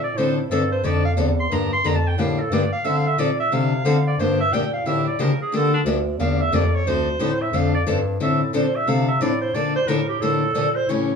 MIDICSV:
0, 0, Header, 1, 4, 480
1, 0, Start_track
1, 0, Key_signature, -1, "minor"
1, 0, Tempo, 335008
1, 234, Time_signature, 4, 2, 24, 8
1, 15984, End_track
2, 0, Start_track
2, 0, Title_t, "Clarinet"
2, 0, Program_c, 0, 71
2, 51, Note_on_c, 0, 74, 86
2, 252, Note_on_c, 0, 72, 79
2, 274, Note_off_c, 0, 74, 0
2, 533, Note_off_c, 0, 72, 0
2, 545, Note_on_c, 0, 64, 50
2, 730, Note_on_c, 0, 69, 71
2, 752, Note_off_c, 0, 64, 0
2, 1012, Note_off_c, 0, 69, 0
2, 1031, Note_on_c, 0, 72, 82
2, 1220, Note_on_c, 0, 74, 90
2, 1242, Note_off_c, 0, 72, 0
2, 1497, Note_off_c, 0, 74, 0
2, 1507, Note_on_c, 0, 77, 89
2, 1613, Note_off_c, 0, 77, 0
2, 2004, Note_on_c, 0, 84, 93
2, 2192, Note_on_c, 0, 82, 85
2, 2213, Note_off_c, 0, 84, 0
2, 2462, Note_off_c, 0, 82, 0
2, 2479, Note_on_c, 0, 84, 108
2, 2672, Note_on_c, 0, 82, 83
2, 2693, Note_off_c, 0, 84, 0
2, 2802, Note_on_c, 0, 81, 89
2, 2823, Note_off_c, 0, 82, 0
2, 2974, Note_on_c, 0, 79, 96
2, 2995, Note_off_c, 0, 81, 0
2, 3146, Note_on_c, 0, 77, 82
2, 3167, Note_off_c, 0, 79, 0
2, 3435, Note_on_c, 0, 69, 69
2, 3457, Note_off_c, 0, 77, 0
2, 3629, Note_on_c, 0, 74, 79
2, 3650, Note_off_c, 0, 69, 0
2, 3895, Note_off_c, 0, 74, 0
2, 3903, Note_on_c, 0, 77, 101
2, 4085, Note_on_c, 0, 76, 86
2, 4107, Note_off_c, 0, 77, 0
2, 4249, Note_on_c, 0, 77, 97
2, 4270, Note_off_c, 0, 76, 0
2, 4405, Note_on_c, 0, 76, 86
2, 4426, Note_off_c, 0, 77, 0
2, 4579, Note_on_c, 0, 74, 80
2, 4600, Note_off_c, 0, 76, 0
2, 4855, Note_off_c, 0, 74, 0
2, 4870, Note_on_c, 0, 76, 97
2, 5060, Note_on_c, 0, 77, 90
2, 5081, Note_off_c, 0, 76, 0
2, 5815, Note_off_c, 0, 77, 0
2, 5838, Note_on_c, 0, 74, 84
2, 6019, Note_on_c, 0, 72, 82
2, 6041, Note_off_c, 0, 74, 0
2, 6295, Note_off_c, 0, 72, 0
2, 6310, Note_on_c, 0, 76, 97
2, 6490, Note_on_c, 0, 79, 98
2, 6511, Note_off_c, 0, 76, 0
2, 6770, Note_off_c, 0, 79, 0
2, 6785, Note_on_c, 0, 77, 86
2, 6974, Note_on_c, 0, 76, 84
2, 6995, Note_off_c, 0, 77, 0
2, 7252, Note_off_c, 0, 76, 0
2, 7274, Note_on_c, 0, 74, 83
2, 7475, Note_on_c, 0, 70, 76
2, 7497, Note_off_c, 0, 74, 0
2, 7743, Note_off_c, 0, 70, 0
2, 7761, Note_on_c, 0, 68, 81
2, 7951, Note_on_c, 0, 69, 90
2, 7972, Note_off_c, 0, 68, 0
2, 8215, Note_off_c, 0, 69, 0
2, 8223, Note_on_c, 0, 62, 89
2, 8330, Note_off_c, 0, 62, 0
2, 8887, Note_on_c, 0, 77, 84
2, 9188, Note_on_c, 0, 76, 85
2, 9209, Note_off_c, 0, 77, 0
2, 9380, Note_on_c, 0, 74, 84
2, 9401, Note_off_c, 0, 76, 0
2, 9674, Note_on_c, 0, 73, 90
2, 9695, Note_off_c, 0, 74, 0
2, 9855, Note_on_c, 0, 72, 92
2, 9876, Note_off_c, 0, 73, 0
2, 10630, Note_on_c, 0, 76, 91
2, 10651, Note_off_c, 0, 72, 0
2, 10825, Note_on_c, 0, 77, 95
2, 10847, Note_off_c, 0, 76, 0
2, 11098, Note_off_c, 0, 77, 0
2, 11105, Note_on_c, 0, 74, 95
2, 11211, Note_off_c, 0, 74, 0
2, 11783, Note_on_c, 0, 76, 85
2, 12038, Note_off_c, 0, 76, 0
2, 12088, Note_on_c, 0, 69, 59
2, 12255, Note_on_c, 0, 72, 84
2, 12277, Note_off_c, 0, 69, 0
2, 12546, Note_on_c, 0, 76, 93
2, 12567, Note_off_c, 0, 72, 0
2, 12734, Note_on_c, 0, 77, 102
2, 12755, Note_off_c, 0, 76, 0
2, 13009, Note_off_c, 0, 77, 0
2, 13017, Note_on_c, 0, 76, 87
2, 13207, Note_on_c, 0, 74, 94
2, 13229, Note_off_c, 0, 76, 0
2, 13481, Note_off_c, 0, 74, 0
2, 13490, Note_on_c, 0, 72, 84
2, 13680, Note_on_c, 0, 74, 94
2, 13702, Note_off_c, 0, 72, 0
2, 13966, Note_off_c, 0, 74, 0
2, 13983, Note_on_c, 0, 72, 100
2, 14156, Note_on_c, 0, 70, 86
2, 14178, Note_off_c, 0, 72, 0
2, 14444, Note_off_c, 0, 70, 0
2, 14456, Note_on_c, 0, 67, 95
2, 14635, Note_on_c, 0, 69, 88
2, 14657, Note_off_c, 0, 67, 0
2, 15403, Note_on_c, 0, 72, 91
2, 15425, Note_off_c, 0, 69, 0
2, 15606, Note_on_c, 0, 73, 81
2, 15628, Note_off_c, 0, 72, 0
2, 15984, Note_off_c, 0, 73, 0
2, 15984, End_track
3, 0, Start_track
3, 0, Title_t, "Steel-string acoustic guitar"
3, 0, Program_c, 1, 25
3, 252, Note_on_c, 1, 50, 70
3, 254, Note_on_c, 1, 53, 78
3, 260, Note_on_c, 1, 62, 64
3, 262, Note_on_c, 1, 60, 72
3, 270, Note_on_c, 1, 69, 80
3, 537, Note_off_c, 1, 50, 0
3, 538, Note_off_c, 1, 53, 0
3, 541, Note_off_c, 1, 62, 0
3, 542, Note_off_c, 1, 60, 0
3, 546, Note_off_c, 1, 69, 0
3, 729, Note_on_c, 1, 50, 86
3, 735, Note_on_c, 1, 53, 82
3, 738, Note_on_c, 1, 60, 92
3, 746, Note_on_c, 1, 69, 88
3, 747, Note_on_c, 1, 62, 94
3, 878, Note_off_c, 1, 50, 0
3, 881, Note_off_c, 1, 53, 0
3, 882, Note_off_c, 1, 60, 0
3, 886, Note_off_c, 1, 69, 0
3, 887, Note_off_c, 1, 62, 0
3, 1198, Note_on_c, 1, 50, 75
3, 1209, Note_on_c, 1, 53, 74
3, 1210, Note_on_c, 1, 60, 72
3, 1217, Note_on_c, 1, 62, 68
3, 1220, Note_on_c, 1, 69, 81
3, 1489, Note_off_c, 1, 50, 0
3, 1495, Note_off_c, 1, 53, 0
3, 1496, Note_off_c, 1, 60, 0
3, 1499, Note_off_c, 1, 62, 0
3, 1501, Note_off_c, 1, 69, 0
3, 1673, Note_on_c, 1, 50, 82
3, 1681, Note_on_c, 1, 53, 88
3, 1687, Note_on_c, 1, 60, 89
3, 1690, Note_on_c, 1, 62, 85
3, 1698, Note_on_c, 1, 69, 90
3, 1830, Note_off_c, 1, 50, 0
3, 1834, Note_off_c, 1, 53, 0
3, 1836, Note_off_c, 1, 60, 0
3, 1838, Note_off_c, 1, 62, 0
3, 1842, Note_off_c, 1, 69, 0
3, 2170, Note_on_c, 1, 50, 76
3, 2172, Note_on_c, 1, 58, 72
3, 2174, Note_on_c, 1, 53, 69
3, 2181, Note_on_c, 1, 62, 79
3, 2184, Note_on_c, 1, 67, 79
3, 2455, Note_off_c, 1, 50, 0
3, 2456, Note_off_c, 1, 58, 0
3, 2457, Note_off_c, 1, 53, 0
3, 2461, Note_off_c, 1, 62, 0
3, 2462, Note_off_c, 1, 67, 0
3, 2640, Note_on_c, 1, 50, 85
3, 2646, Note_on_c, 1, 53, 91
3, 2653, Note_on_c, 1, 58, 88
3, 2656, Note_on_c, 1, 62, 97
3, 2663, Note_on_c, 1, 67, 96
3, 2792, Note_off_c, 1, 50, 0
3, 2795, Note_off_c, 1, 53, 0
3, 2799, Note_off_c, 1, 58, 0
3, 2801, Note_off_c, 1, 62, 0
3, 2804, Note_off_c, 1, 67, 0
3, 3123, Note_on_c, 1, 50, 64
3, 3132, Note_on_c, 1, 53, 73
3, 3133, Note_on_c, 1, 62, 68
3, 3135, Note_on_c, 1, 58, 77
3, 3143, Note_on_c, 1, 67, 74
3, 3411, Note_off_c, 1, 50, 0
3, 3416, Note_off_c, 1, 53, 0
3, 3416, Note_off_c, 1, 62, 0
3, 3417, Note_off_c, 1, 58, 0
3, 3421, Note_off_c, 1, 67, 0
3, 3606, Note_on_c, 1, 50, 87
3, 3607, Note_on_c, 1, 53, 83
3, 3615, Note_on_c, 1, 58, 93
3, 3620, Note_on_c, 1, 62, 81
3, 3622, Note_on_c, 1, 67, 89
3, 3755, Note_off_c, 1, 50, 0
3, 3756, Note_off_c, 1, 53, 0
3, 3760, Note_off_c, 1, 58, 0
3, 3763, Note_off_c, 1, 62, 0
3, 3763, Note_off_c, 1, 67, 0
3, 4074, Note_on_c, 1, 50, 71
3, 4081, Note_on_c, 1, 53, 73
3, 4085, Note_on_c, 1, 62, 75
3, 4087, Note_on_c, 1, 60, 71
3, 4091, Note_on_c, 1, 69, 81
3, 4367, Note_off_c, 1, 50, 0
3, 4370, Note_off_c, 1, 53, 0
3, 4372, Note_off_c, 1, 62, 0
3, 4373, Note_off_c, 1, 60, 0
3, 4375, Note_off_c, 1, 69, 0
3, 4560, Note_on_c, 1, 50, 92
3, 4568, Note_on_c, 1, 53, 86
3, 4572, Note_on_c, 1, 60, 91
3, 4575, Note_on_c, 1, 62, 93
3, 4583, Note_on_c, 1, 69, 93
3, 4712, Note_off_c, 1, 50, 0
3, 4716, Note_off_c, 1, 53, 0
3, 4718, Note_off_c, 1, 60, 0
3, 4720, Note_off_c, 1, 62, 0
3, 4724, Note_off_c, 1, 69, 0
3, 5040, Note_on_c, 1, 53, 66
3, 5042, Note_on_c, 1, 50, 69
3, 5050, Note_on_c, 1, 60, 69
3, 5052, Note_on_c, 1, 62, 74
3, 5057, Note_on_c, 1, 69, 82
3, 5329, Note_off_c, 1, 53, 0
3, 5331, Note_off_c, 1, 50, 0
3, 5335, Note_off_c, 1, 60, 0
3, 5336, Note_off_c, 1, 62, 0
3, 5338, Note_off_c, 1, 69, 0
3, 5513, Note_on_c, 1, 50, 80
3, 5520, Note_on_c, 1, 53, 94
3, 5526, Note_on_c, 1, 60, 96
3, 5528, Note_on_c, 1, 62, 88
3, 5531, Note_on_c, 1, 69, 95
3, 5669, Note_off_c, 1, 50, 0
3, 5672, Note_off_c, 1, 53, 0
3, 5675, Note_off_c, 1, 60, 0
3, 5676, Note_off_c, 1, 62, 0
3, 5677, Note_off_c, 1, 69, 0
3, 6009, Note_on_c, 1, 50, 68
3, 6016, Note_on_c, 1, 53, 67
3, 6019, Note_on_c, 1, 58, 76
3, 6023, Note_on_c, 1, 67, 81
3, 6024, Note_on_c, 1, 62, 73
3, 6294, Note_off_c, 1, 50, 0
3, 6297, Note_off_c, 1, 53, 0
3, 6299, Note_off_c, 1, 58, 0
3, 6301, Note_off_c, 1, 62, 0
3, 6301, Note_off_c, 1, 67, 0
3, 6493, Note_on_c, 1, 50, 82
3, 6494, Note_on_c, 1, 53, 91
3, 6501, Note_on_c, 1, 58, 88
3, 6506, Note_on_c, 1, 62, 95
3, 6509, Note_on_c, 1, 67, 93
3, 6638, Note_off_c, 1, 50, 0
3, 6639, Note_off_c, 1, 53, 0
3, 6643, Note_off_c, 1, 58, 0
3, 6645, Note_off_c, 1, 62, 0
3, 6646, Note_off_c, 1, 67, 0
3, 6958, Note_on_c, 1, 50, 65
3, 6964, Note_on_c, 1, 53, 67
3, 6972, Note_on_c, 1, 58, 72
3, 6975, Note_on_c, 1, 62, 74
3, 6980, Note_on_c, 1, 67, 74
3, 7249, Note_off_c, 1, 50, 0
3, 7251, Note_off_c, 1, 53, 0
3, 7255, Note_off_c, 1, 58, 0
3, 7257, Note_off_c, 1, 62, 0
3, 7260, Note_off_c, 1, 67, 0
3, 7435, Note_on_c, 1, 50, 84
3, 7439, Note_on_c, 1, 53, 87
3, 7445, Note_on_c, 1, 58, 86
3, 7448, Note_on_c, 1, 62, 85
3, 7452, Note_on_c, 1, 67, 97
3, 7589, Note_off_c, 1, 50, 0
3, 7591, Note_off_c, 1, 53, 0
3, 7595, Note_off_c, 1, 58, 0
3, 7596, Note_off_c, 1, 62, 0
3, 7598, Note_off_c, 1, 67, 0
3, 7912, Note_on_c, 1, 50, 76
3, 7925, Note_on_c, 1, 53, 73
3, 7930, Note_on_c, 1, 58, 72
3, 7932, Note_on_c, 1, 67, 85
3, 7936, Note_on_c, 1, 62, 77
3, 8206, Note_off_c, 1, 50, 0
3, 8212, Note_off_c, 1, 53, 0
3, 8214, Note_off_c, 1, 58, 0
3, 8215, Note_off_c, 1, 67, 0
3, 8217, Note_off_c, 1, 62, 0
3, 8394, Note_on_c, 1, 50, 83
3, 8396, Note_on_c, 1, 53, 85
3, 8402, Note_on_c, 1, 58, 89
3, 8405, Note_on_c, 1, 62, 95
3, 8417, Note_on_c, 1, 67, 89
3, 8549, Note_off_c, 1, 50, 0
3, 8550, Note_off_c, 1, 53, 0
3, 8553, Note_off_c, 1, 58, 0
3, 8555, Note_off_c, 1, 62, 0
3, 8561, Note_off_c, 1, 67, 0
3, 8876, Note_on_c, 1, 50, 71
3, 8881, Note_on_c, 1, 53, 69
3, 8885, Note_on_c, 1, 58, 76
3, 8891, Note_on_c, 1, 62, 78
3, 8893, Note_on_c, 1, 67, 80
3, 9167, Note_off_c, 1, 50, 0
3, 9170, Note_off_c, 1, 53, 0
3, 9172, Note_off_c, 1, 58, 0
3, 9175, Note_off_c, 1, 62, 0
3, 9176, Note_off_c, 1, 67, 0
3, 9346, Note_on_c, 1, 50, 85
3, 9356, Note_on_c, 1, 53, 95
3, 9356, Note_on_c, 1, 58, 88
3, 9356, Note_on_c, 1, 62, 91
3, 9368, Note_on_c, 1, 67, 92
3, 9505, Note_off_c, 1, 50, 0
3, 9510, Note_off_c, 1, 53, 0
3, 9510, Note_off_c, 1, 58, 0
3, 9510, Note_off_c, 1, 62, 0
3, 9516, Note_off_c, 1, 67, 0
3, 9841, Note_on_c, 1, 50, 68
3, 9844, Note_on_c, 1, 60, 79
3, 9846, Note_on_c, 1, 53, 75
3, 9853, Note_on_c, 1, 62, 78
3, 9862, Note_on_c, 1, 69, 80
3, 10130, Note_off_c, 1, 50, 0
3, 10131, Note_off_c, 1, 60, 0
3, 10132, Note_off_c, 1, 53, 0
3, 10136, Note_off_c, 1, 62, 0
3, 10140, Note_off_c, 1, 69, 0
3, 10308, Note_on_c, 1, 50, 82
3, 10316, Note_on_c, 1, 53, 92
3, 10318, Note_on_c, 1, 60, 91
3, 10324, Note_on_c, 1, 62, 88
3, 10325, Note_on_c, 1, 69, 91
3, 10466, Note_off_c, 1, 50, 0
3, 10470, Note_off_c, 1, 53, 0
3, 10471, Note_off_c, 1, 60, 0
3, 10474, Note_off_c, 1, 62, 0
3, 10475, Note_off_c, 1, 69, 0
3, 10791, Note_on_c, 1, 50, 72
3, 10793, Note_on_c, 1, 53, 68
3, 10804, Note_on_c, 1, 60, 74
3, 10804, Note_on_c, 1, 62, 77
3, 10808, Note_on_c, 1, 69, 76
3, 11085, Note_off_c, 1, 50, 0
3, 11086, Note_off_c, 1, 53, 0
3, 11091, Note_off_c, 1, 60, 0
3, 11092, Note_off_c, 1, 62, 0
3, 11094, Note_off_c, 1, 69, 0
3, 11268, Note_on_c, 1, 50, 87
3, 11272, Note_on_c, 1, 53, 92
3, 11279, Note_on_c, 1, 60, 99
3, 11281, Note_on_c, 1, 62, 99
3, 11287, Note_on_c, 1, 69, 100
3, 11426, Note_off_c, 1, 50, 0
3, 11428, Note_off_c, 1, 53, 0
3, 11432, Note_off_c, 1, 60, 0
3, 11433, Note_off_c, 1, 62, 0
3, 11436, Note_off_c, 1, 69, 0
3, 11751, Note_on_c, 1, 50, 70
3, 11753, Note_on_c, 1, 53, 68
3, 11757, Note_on_c, 1, 60, 78
3, 11760, Note_on_c, 1, 62, 77
3, 11760, Note_on_c, 1, 69, 74
3, 12045, Note_off_c, 1, 50, 0
3, 12046, Note_off_c, 1, 53, 0
3, 12048, Note_off_c, 1, 60, 0
3, 12050, Note_off_c, 1, 62, 0
3, 12050, Note_off_c, 1, 69, 0
3, 12224, Note_on_c, 1, 50, 81
3, 12234, Note_on_c, 1, 53, 84
3, 12237, Note_on_c, 1, 60, 89
3, 12240, Note_on_c, 1, 62, 92
3, 12241, Note_on_c, 1, 69, 94
3, 12384, Note_off_c, 1, 50, 0
3, 12389, Note_off_c, 1, 53, 0
3, 12391, Note_off_c, 1, 60, 0
3, 12392, Note_off_c, 1, 62, 0
3, 12393, Note_off_c, 1, 69, 0
3, 12713, Note_on_c, 1, 50, 69
3, 12716, Note_on_c, 1, 60, 69
3, 12719, Note_on_c, 1, 53, 67
3, 12722, Note_on_c, 1, 62, 69
3, 12729, Note_on_c, 1, 69, 77
3, 13006, Note_off_c, 1, 50, 0
3, 13007, Note_off_c, 1, 60, 0
3, 13009, Note_off_c, 1, 53, 0
3, 13011, Note_off_c, 1, 62, 0
3, 13014, Note_off_c, 1, 69, 0
3, 13192, Note_on_c, 1, 50, 87
3, 13194, Note_on_c, 1, 53, 83
3, 13205, Note_on_c, 1, 60, 94
3, 13208, Note_on_c, 1, 62, 89
3, 13208, Note_on_c, 1, 69, 94
3, 13348, Note_off_c, 1, 50, 0
3, 13349, Note_off_c, 1, 53, 0
3, 13355, Note_off_c, 1, 60, 0
3, 13356, Note_off_c, 1, 62, 0
3, 13356, Note_off_c, 1, 69, 0
3, 13675, Note_on_c, 1, 50, 73
3, 13680, Note_on_c, 1, 53, 66
3, 13690, Note_on_c, 1, 58, 72
3, 13690, Note_on_c, 1, 69, 80
3, 13694, Note_on_c, 1, 62, 79
3, 13967, Note_off_c, 1, 50, 0
3, 13970, Note_off_c, 1, 53, 0
3, 13975, Note_off_c, 1, 58, 0
3, 13975, Note_off_c, 1, 69, 0
3, 13977, Note_off_c, 1, 62, 0
3, 14157, Note_on_c, 1, 50, 89
3, 14161, Note_on_c, 1, 53, 85
3, 14167, Note_on_c, 1, 58, 89
3, 14169, Note_on_c, 1, 62, 83
3, 14172, Note_on_c, 1, 69, 99
3, 14311, Note_off_c, 1, 50, 0
3, 14313, Note_off_c, 1, 53, 0
3, 14316, Note_off_c, 1, 58, 0
3, 14317, Note_off_c, 1, 62, 0
3, 14318, Note_off_c, 1, 69, 0
3, 14643, Note_on_c, 1, 50, 70
3, 14650, Note_on_c, 1, 53, 74
3, 14654, Note_on_c, 1, 58, 79
3, 14657, Note_on_c, 1, 69, 83
3, 14662, Note_on_c, 1, 62, 75
3, 14931, Note_off_c, 1, 50, 0
3, 14935, Note_off_c, 1, 53, 0
3, 14937, Note_off_c, 1, 58, 0
3, 14938, Note_off_c, 1, 69, 0
3, 14941, Note_off_c, 1, 62, 0
3, 15110, Note_on_c, 1, 50, 85
3, 15118, Note_on_c, 1, 53, 86
3, 15121, Note_on_c, 1, 58, 90
3, 15127, Note_on_c, 1, 62, 89
3, 15129, Note_on_c, 1, 69, 96
3, 15267, Note_off_c, 1, 50, 0
3, 15271, Note_off_c, 1, 53, 0
3, 15273, Note_off_c, 1, 58, 0
3, 15276, Note_off_c, 1, 62, 0
3, 15277, Note_off_c, 1, 69, 0
3, 15602, Note_on_c, 1, 49, 72
3, 15606, Note_on_c, 1, 52, 72
3, 15611, Note_on_c, 1, 57, 65
3, 15617, Note_on_c, 1, 61, 84
3, 15622, Note_on_c, 1, 67, 81
3, 15890, Note_off_c, 1, 49, 0
3, 15892, Note_off_c, 1, 52, 0
3, 15895, Note_off_c, 1, 57, 0
3, 15898, Note_off_c, 1, 61, 0
3, 15901, Note_off_c, 1, 67, 0
3, 15984, End_track
4, 0, Start_track
4, 0, Title_t, "Bass clarinet"
4, 0, Program_c, 2, 71
4, 0, Note_on_c, 2, 46, 93
4, 196, Note_off_c, 2, 46, 0
4, 205, Note_on_c, 2, 45, 77
4, 684, Note_off_c, 2, 45, 0
4, 694, Note_on_c, 2, 43, 85
4, 1169, Note_off_c, 2, 43, 0
4, 1187, Note_on_c, 2, 41, 86
4, 1655, Note_off_c, 2, 41, 0
4, 1666, Note_on_c, 2, 40, 95
4, 2131, Note_off_c, 2, 40, 0
4, 2139, Note_on_c, 2, 43, 75
4, 2611, Note_off_c, 2, 43, 0
4, 2624, Note_on_c, 2, 41, 91
4, 3093, Note_off_c, 2, 41, 0
4, 3111, Note_on_c, 2, 45, 83
4, 3571, Note_off_c, 2, 45, 0
4, 3579, Note_on_c, 2, 43, 95
4, 3855, Note_off_c, 2, 43, 0
4, 4064, Note_on_c, 2, 50, 85
4, 4533, Note_off_c, 2, 50, 0
4, 4552, Note_on_c, 2, 46, 87
4, 5017, Note_off_c, 2, 46, 0
4, 5034, Note_on_c, 2, 48, 88
4, 5491, Note_off_c, 2, 48, 0
4, 5500, Note_on_c, 2, 50, 98
4, 5970, Note_off_c, 2, 50, 0
4, 5983, Note_on_c, 2, 43, 84
4, 6452, Note_off_c, 2, 43, 0
4, 6469, Note_on_c, 2, 46, 94
4, 6935, Note_off_c, 2, 46, 0
4, 6946, Note_on_c, 2, 45, 93
4, 7413, Note_off_c, 2, 45, 0
4, 7428, Note_on_c, 2, 49, 96
4, 7699, Note_off_c, 2, 49, 0
4, 7716, Note_on_c, 2, 49, 45
4, 7812, Note_off_c, 2, 49, 0
4, 7906, Note_on_c, 2, 50, 83
4, 8364, Note_off_c, 2, 50, 0
4, 8372, Note_on_c, 2, 38, 92
4, 8847, Note_off_c, 2, 38, 0
4, 8854, Note_on_c, 2, 40, 86
4, 9322, Note_off_c, 2, 40, 0
4, 9330, Note_on_c, 2, 41, 103
4, 9806, Note_off_c, 2, 41, 0
4, 9819, Note_on_c, 2, 38, 83
4, 10290, Note_off_c, 2, 38, 0
4, 10298, Note_on_c, 2, 45, 96
4, 10765, Note_off_c, 2, 45, 0
4, 10774, Note_on_c, 2, 41, 88
4, 11248, Note_off_c, 2, 41, 0
4, 11271, Note_on_c, 2, 43, 100
4, 11736, Note_off_c, 2, 43, 0
4, 11749, Note_on_c, 2, 45, 79
4, 12215, Note_off_c, 2, 45, 0
4, 12234, Note_on_c, 2, 46, 88
4, 12694, Note_off_c, 2, 46, 0
4, 12703, Note_on_c, 2, 48, 84
4, 13172, Note_off_c, 2, 48, 0
4, 13183, Note_on_c, 2, 45, 97
4, 13652, Note_off_c, 2, 45, 0
4, 13659, Note_on_c, 2, 46, 84
4, 14120, Note_off_c, 2, 46, 0
4, 14128, Note_on_c, 2, 45, 93
4, 14605, Note_off_c, 2, 45, 0
4, 14610, Note_on_c, 2, 45, 88
4, 15079, Note_off_c, 2, 45, 0
4, 15088, Note_on_c, 2, 46, 96
4, 15564, Note_off_c, 2, 46, 0
4, 15571, Note_on_c, 2, 45, 88
4, 15984, Note_off_c, 2, 45, 0
4, 15984, End_track
0, 0, End_of_file